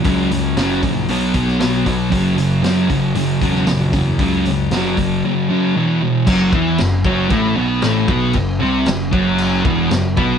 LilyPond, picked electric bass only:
\new Staff \with { instrumentName = "Picked electric bass" } { \clef bass \time 4/4 \key b \major \tempo 4 = 116 cis,4 fis,,8 ais,,8 b,,8 b,,8 b,,8 b,,8 | fis,,8 fis,,8 fis,,8 fis,,8 fis,,8 e,,8 ais,,8 e,8 | cis,4 fis,,8 fis,,8 r2 | fis,,8 e,8 fis,,8 fis,,8 a,,8 b,,8 a,,8 b,,8 |
fis,,8 bis,,8 fis,,8 fis,,4 e,,8 fis,,8 b,,8 | }